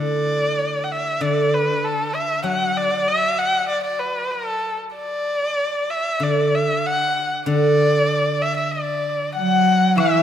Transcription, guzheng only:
0.00 1.19 D3 soft
0.00 0.34 E4 soft
0.00 0.66 A4 soft
1.21 3.05 D3 soft
2.43 4.29 F#3 medium
6.20 7.45 D3 soft
7.46 9.34 D3 medium
9.98 10.23 E3 soft

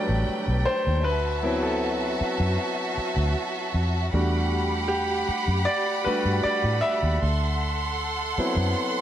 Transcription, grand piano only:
0.00 0.24 F#3 soft
0.00 1.07 G3 soft
0.00 1.07 A3 medium
0.00 1.07 D4 soft
0.00 1.01 E4 medium
0.00 1.07 G4 medium
0.00 0.69 D5 loud
0.66 1.06 C5 medium
1.04 1.64 B4 medium
1.43 1.94 F#3 medium
1.43 1.95 B3 soft
1.43 1.95 C4 soft
1.43 1.95 E4 medium
1.63 2.74 A4 medium
4.13 4.64 G3 soft
4.13 4.65 A3 soft
4.13 4.65 D4 soft
4.13 4.65 F#4 medium
4.88 5.69 G4 medium
5.65 6.06 D5 loud
6.04 6.41 G3 soft
6.04 6.41 A3 soft
6.04 6.41 D4 soft
6.04 6.41 F#4 medium
6.04 6.45 B4 medium
6.43 6.52 D5 medium
6.81 9.01 E5 loud
8.38 9.01 F#3 soft
8.38 9.01 B3 soft
8.38 9.01 C4 soft
8.38 9.01 E4 medium

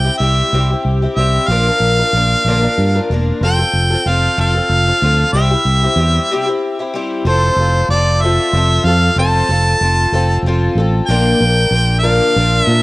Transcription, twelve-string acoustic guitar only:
0.05 0.21 C4 soft
0.05 0.21 E4 soft
0.05 0.20 G4 soft
0.20 0.52 G3 medium
0.20 0.53 C4 medium
0.20 0.53 E4 medium
0.20 0.54 G4 medium
0.53 0.69 C3 medium
0.53 0.69 G3 medium
0.53 0.70 C4 medium
0.53 0.70 E4 medium
0.53 0.70 G4 medium
0.71 1.03 C4 soft
0.71 1.02 E4 soft
0.71 1.01 G4 medium
1.02 1.17 C4 soft
1.02 1.18 E4 soft
1.02 1.18 G4 soft
1.18 1.50 G3 medium
1.18 1.50 C4 medium
1.18 1.50 E4 medium
1.18 1.51 G4 medium
1.50 1.66 A#2 medium
1.50 1.66 D3 medium
1.50 1.66 F3 medium
1.50 1.66 A#3 medium
1.50 1.66 D4 medium
1.50 1.67 A#4 medium
1.68 2.00 F3 soft
1.68 1.99 A#3 soft
1.68 1.99 D4 medium
1.68 1.98 A#4 soft
1.99 2.13 F3 soft
1.99 2.14 A#3 soft
1.99 2.15 D4 soft
1.99 2.14 A#4 soft
2.15 2.46 F3 medium
2.15 2.46 A#3 medium
2.15 2.47 D4 medium
2.15 2.47 A#4 medium
2.48 2.63 A#2 medium
2.48 2.63 D3 medium
2.48 2.63 F3 medium
2.48 2.63 A#3 medium
2.48 2.63 D4 medium
2.48 2.62 A#4 medium
2.63 2.96 F3 soft
2.63 2.96 A#3 medium
2.63 2.95 D4 medium
2.63 2.94 A#4 medium
2.95 3.10 F3 soft
2.95 3.10 A#3 soft
2.95 3.11 D4 soft
2.95 3.10 A#4 medium
3.11 3.41 F3 medium
3.11 3.42 A#3 medium
3.11 3.43 D4 medium
3.11 3.44 A#4 medium
3.43 3.58 F3 medium
3.43 3.58 C4 medium
3.43 3.59 F4 medium
3.43 3.57 A4 medium
3.59 3.92 C4 soft
3.59 3.91 F4 medium
3.59 3.89 A4 medium
3.90 4.07 C4 soft
3.90 4.07 F4 soft
3.90 4.06 A4 medium
4.07 4.36 F3 medium
4.07 4.37 C4 medium
4.07 4.37 F4 medium
4.07 4.38 A4 medium
4.37 4.54 F3 medium
4.37 4.54 C4 medium
4.37 4.54 F4 medium
4.37 4.53 A4 medium
4.55 4.88 C4 soft
4.55 4.86 F4 soft
4.55 4.85 A4 medium
4.87 5.03 C4 soft
4.87 5.03 F4 soft
4.87 5.02 A4 soft
5.03 5.35 F3 medium
5.03 5.34 C4 medium
5.03 5.35 F4 medium
5.03 5.36 A4 medium
5.35 5.50 C3 medium
5.35 5.51 G3 medium
5.35 5.51 C4 medium
5.35 5.51 E4 medium
5.35 5.50 G4 medium
5.51 5.84 C4 soft
5.51 5.83 E4 medium
5.51 5.82 G4 medium
5.83 5.99 C4 soft
5.83 5.99 E4 soft
5.83 5.98 G4 medium
5.99 6.30 G3 medium
5.99 6.31 C4 medium
5.99 6.32 E4 medium
5.99 6.32 G4 medium
6.31 6.47 C3 medium
6.31 6.47 G3 medium
6.31 6.47 C4 medium
6.31 6.47 E4 medium
6.31 6.45 G4 medium
6.46 6.79 C4 medium
6.46 6.79 E4 medium
6.46 6.78 G4 medium
6.79 6.94 C4 soft
6.79 6.95 E4 medium
6.79 6.95 G4 medium
6.94 7.25 G3 medium
6.94 7.25 C4 medium
6.94 7.27 E4 medium
6.94 7.27 G4 medium
7.25 7.58 F3 medium
7.25 7.58 C4 medium
7.25 7.58 F4 medium
7.25 7.58 A4 medium
7.59 7.90 C4 soft
7.59 7.91 F4 soft
7.59 7.91 A4 medium
7.90 8.22 F3 medium
7.90 8.23 C4 medium
7.90 8.23 F4 medium
7.90 8.23 A4 medium
8.24 8.53 F3 medium
8.24 8.54 C4 medium
8.24 8.55 F4 medium
8.24 8.55 A4 medium
8.54 8.86 F3 medium
8.54 8.87 C4 medium
8.54 8.87 F4 medium
8.54 8.86 A4 medium
8.87 9.17 C4 soft
8.87 9.18 F4 soft
8.87 9.18 A4 medium
9.18 9.49 F3 medium
9.18 9.50 C4 medium
9.18 9.50 F4 medium
9.18 9.48 A4 medium
9.50 9.81 C4 soft
9.50 9.82 F4 soft
9.50 9.81 A4 medium
9.82 10.13 F3 medium
9.82 10.14 C4 medium
9.82 10.13 F4 medium
9.82 10.12 A4 medium
10.13 10.45 F3 medium
10.13 10.46 C4 medium
10.13 10.45 F4 medium
10.13 10.45 A4 medium
10.46 10.77 F3 medium
10.46 10.78 C4 medium
10.46 10.78 F4 medium
10.46 10.77 A4 medium
10.78 11.10 C4 medium
10.78 11.10 F4 medium
10.78 11.09 A4 medium
11.09 11.41 A#2 medium
11.09 11.41 D3 medium
11.09 11.41 F3 medium
11.09 11.41 A#3 medium
11.09 11.40 D4 medium
11.09 11.40 A#4 medium
11.41 11.71 F3 soft
11.41 11.72 A#3 soft
11.41 11.73 D4 soft
11.41 11.72 A#4 medium
11.72 12.03 F3 medium
11.72 12.03 A#3 medium
11.72 12.03 D4 medium
11.72 12.02 A#4 medium
12.03 12.37 A#2 medium
12.03 12.36 D3 medium
12.03 12.35 F3 medium
12.03 12.36 A#3 medium
12.03 12.36 D4 medium
12.03 12.36 A#4 medium
12.36 12.68 F3 medium
12.36 12.69 A#3 medium
12.36 12.68 D4 medium
12.36 12.67 A#4 medium
12.68 12.83 F3 soft
12.68 12.83 A#3 soft
12.68 12.83 D4 soft
12.68 12.83 A#4 soft

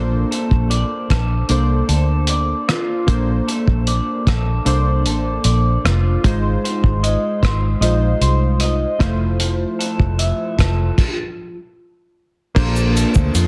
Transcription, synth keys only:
0.00 1.25 A#3 medium
0.00 1.26 D4 medium
0.00 1.26 A4 medium
0.00 1.26 C5 medium
1.49 2.83 A#3 medium
1.49 2.84 D4 medium
1.49 2.84 A4 medium
1.49 2.84 C5 medium
3.07 4.41 A#3 medium
3.07 4.42 D4 medium
3.07 4.42 A4 medium
3.07 4.42 C5 medium
4.65 5.99 A#3 medium
4.65 6.00 D4 medium
4.65 6.00 A4 medium
4.65 6.01 C5 medium
6.23 7.58 G#3 medium
6.23 7.58 D#4 medium
6.23 7.58 F4 medium
6.23 7.59 C5 medium
7.81 9.00 G#3 medium
7.81 9.01 D#4 medium
7.81 9.00 F4 medium
7.81 9.00 C5 medium
8.99 10.34 A3 medium
8.99 10.34 E4 medium
8.99 10.35 F4 medium
8.99 10.35 C5 medium
12.55 13.47 A#3 medium
12.55 13.47 D4 medium
12.55 13.47 A4 medium
12.55 13.47 C5 medium

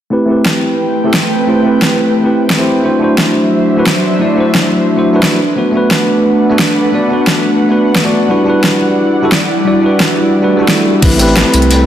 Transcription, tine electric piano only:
0.10 0.25 A3 medium
0.10 0.26 C4 medium
0.10 0.27 E4 medium
0.10 0.27 G4 medium
0.10 0.27 B4 medium
0.26 1.02 A3 medium
0.26 1.03 C4 medium
0.26 1.03 E4 medium
0.30 1.04 G4 medium
0.30 1.05 B4 medium
1.04 1.14 A3 medium
1.04 1.15 C4 medium
1.04 1.15 E4 medium
1.04 1.15 G4 medium
1.04 1.16 A4 medium
1.47 1.61 A3 medium
1.47 1.63 C4 medium
1.47 1.63 E4 medium
1.47 1.63 G4 medium
1.47 1.64 C5 medium
1.62 2.21 A3 medium
1.62 2.22 C4 medium
1.62 2.23 E4 medium
1.66 2.23 G4 medium
1.66 2.24 B4 medium
2.23 2.56 A3 medium
2.23 2.56 C4 medium
2.23 2.57 E4 medium
2.23 2.57 G4 medium
2.23 2.57 B4 medium
2.57 2.82 A3 medium
2.57 2.82 C4 medium
2.57 2.82 E4 medium
2.57 2.83 G4 medium
2.57 2.83 C5 loud
2.83 2.97 A3 medium
2.83 2.99 D4 medium
2.83 2.99 E4 medium
2.83 3.00 F#4 medium
2.83 3.00 C5 medium
2.99 3.75 A3 medium
2.99 3.75 D4 medium
2.99 3.76 E4 medium
3.03 3.77 F#4 medium
3.03 3.77 C5 medium
3.77 3.87 A3 medium
3.77 3.87 D4 medium
3.77 3.88 E4 medium
3.77 3.88 F#4 medium
3.77 3.88 B4 loud
4.19 4.34 A3 medium
4.19 4.35 D4 medium
4.19 4.36 E4 medium
4.19 4.36 F#4 medium
4.19 4.36 D5 medium
4.35 4.94 A3 medium
4.35 4.95 D4 medium
4.35 4.95 E4 medium
4.39 4.96 F#4 medium
4.39 4.97 C5 medium
4.96 5.12 A3 medium
4.96 5.12 D4 medium
4.96 5.13 E4 medium
4.96 5.13 F#4 medium
4.96 5.13 C5 medium
5.13 5.38 A3 medium
5.13 5.39 D4 medium
5.13 5.39 E4 medium
5.13 5.39 F#4 medium
5.13 5.40 B4 medium
5.56 5.70 A3 medium
5.56 5.72 B3 medium
5.56 5.72 D4 medium
5.56 5.72 F#4 medium
5.56 5.73 B4 medium
5.71 6.47 A3 medium
5.71 6.48 B3 medium
5.71 6.49 D4 medium
5.76 6.50 F#4 medium
5.76 6.50 B4 medium
6.50 6.60 A3 medium
6.50 6.60 B3 medium
6.50 6.60 D4 medium
6.50 6.61 F#4 medium
6.50 6.61 A4 loud
6.92 7.06 A3 medium
6.92 7.08 B3 medium
6.92 7.08 D4 medium
6.92 7.09 F#4 medium
6.92 7.09 D5 medium
7.08 7.67 A3 medium
7.08 7.67 B3 medium
7.08 7.68 D4 medium
7.12 7.69 F#4 medium
7.12 7.70 B4 medium
7.69 8.02 A3 medium
7.69 8.02 B3 medium
7.69 8.02 D4 medium
7.69 8.03 F#4 medium
7.69 8.03 B4 medium
8.03 8.27 A3 medium
8.03 8.27 B3 medium
8.03 8.28 D4 medium
8.03 8.28 F#4 medium
8.03 8.28 D5 loud
8.28 8.43 G3 medium
8.28 8.44 D4 medium
8.28 8.45 E4 medium
8.28 8.45 F#4 medium
8.28 8.45 B4 medium
8.44 9.20 G3 medium
8.44 9.21 D4 medium
8.44 9.22 E4 medium
8.48 9.22 F#4 medium
8.48 9.23 B4 medium
9.22 9.32 G3 medium
9.22 9.33 D4 medium
9.22 9.33 E4 medium
9.22 9.33 F#4 medium
9.22 9.34 A4 loud
9.65 9.79 G3 medium
9.65 9.81 D4 medium
9.65 9.81 E4 medium
9.65 9.81 F#4 medium
9.65 9.82 D5 medium
9.80 10.39 G3 medium
9.80 10.40 D4 medium
9.80 10.41 E4 medium
9.85 10.41 F#4 medium
9.85 10.42 B4 medium
10.41 10.56 G3 medium
10.41 10.57 D4 medium
10.41 10.58 E4 medium
10.41 10.59 F#4 medium
10.41 10.59 B4 medium
10.57 10.99 G3 medium
10.57 11.00 D4 medium
10.57 11.01 E4 medium
10.61 11.01 F#4 medium
10.61 11.02 A4 loud
11.01 11.16 A3 medium
11.01 11.17 C4 medium
11.01 11.17 E4 medium
11.01 11.18 G4 medium
11.01 11.18 B4 loud
11.17 11.86 A3 medium
11.17 11.86 C4 medium
11.17 11.86 E4 medium
11.21 11.86 G4 medium
11.21 11.86 B4 loud

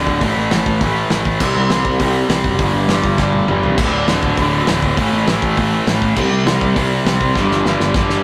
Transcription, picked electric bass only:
0.07 0.18 D1 medium
0.21 0.33 A1 medium
0.37 0.48 A1 loud
0.52 0.63 A1 medium
0.66 0.77 A1 medium
0.81 1.04 A1 medium
1.11 1.22 A1 loud
1.25 1.37 A1 medium
1.40 1.52 C2 medium
1.55 1.67 C2 loud
1.70 1.82 C2 medium
1.85 1.96 C2 medium
2.00 2.22 C2 medium
2.29 2.41 C2 medium
2.44 2.56 F#1 medium
2.59 2.70 G1 medium
2.74 2.85 G1 medium
2.89 3.00 G1 medium
3.04 3.15 G1 medium
3.18 3.41 G1 medium
3.48 3.59 G1 medium
3.63 3.74 C2 medium
3.78 3.89 D1 medium
3.92 4.04 D1 medium
4.08 4.19 D1 loud
4.23 4.34 D1 medium
4.38 4.60 D1 medium
4.69 4.80 D1 medium
4.82 4.94 D1 medium
4.98 5.09 A1 medium
5.13 5.24 A1 medium
5.28 5.39 A1 medium
5.42 5.54 A1 medium
5.57 5.80 A1 medium
5.87 5.98 A1 medium
6.02 6.13 A1 medium
6.17 6.28 C2 medium
6.31 6.42 C2 loud
6.46 6.57 C2 medium
6.61 6.73 C2 medium
6.76 6.99 C2 medium
7.05 7.17 C2 medium
7.21 7.32 C2 medium
7.36 7.47 G1 medium
7.50 7.61 G1 loud
7.64 7.76 G1 loud
7.80 7.91 G1 medium
7.94 8.17 G1 medium

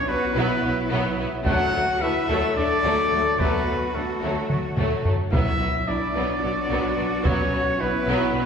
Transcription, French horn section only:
0.07 1.16 B3 medium
1.45 1.97 F#4 medium
2.02 2.57 E4 medium
2.56 3.39 D4 medium
3.38 3.93 B3 medium
3.93 4.48 A3 soft
5.32 5.83 E4 medium
5.87 7.25 D4 medium
7.25 7.79 C#4 medium
7.80 8.46 B3 medium

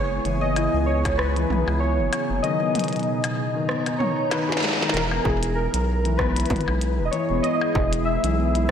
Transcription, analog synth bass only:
0.00 0.20 F#1 loud
0.25 0.69 F#1 loud
0.74 1.46 C#2 medium
1.50 1.64 B1 medium
1.68 2.00 C#2 loud
1.99 2.10 F#1 medium
2.30 2.41 F#1 medium
4.94 5.20 E1 loud
5.25 5.69 E1 loud
5.74 6.46 B1 loud
6.50 6.64 G#1 loud
6.68 7.00 B1 medium
6.99 7.10 E1 medium
7.30 7.41 E1 medium
7.75 8.19 E1 loud
8.24 8.71 B1 medium

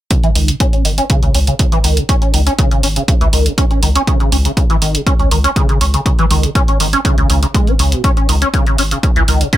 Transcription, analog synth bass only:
0.35 0.51 C#2 medium
0.85 1.01 G#1 medium
1.23 1.30 C#2 medium
1.35 1.50 C#2 medium
1.84 2.00 C#2 medium
2.34 2.49 C#2 loud
2.83 2.99 G#1 medium
3.21 3.28 C#2 medium
3.33 3.49 C#2 medium
3.83 3.98 C#2 medium
4.32 4.48 C#2 loud
4.82 4.97 G#1 medium
5.19 5.27 C#2 medium
5.31 5.47 C#2 medium
5.81 5.97 C#2 loud
6.30 6.46 C#2 loud
6.80 6.96 G#1 medium
7.18 7.25 C#2 medium
7.30 7.45 C#2 medium
7.79 7.95 C#2 medium
8.29 8.45 C#2 loud
8.79 8.94 G#1 medium
9.16 9.24 C#2 medium
9.28 9.44 C#2 medium

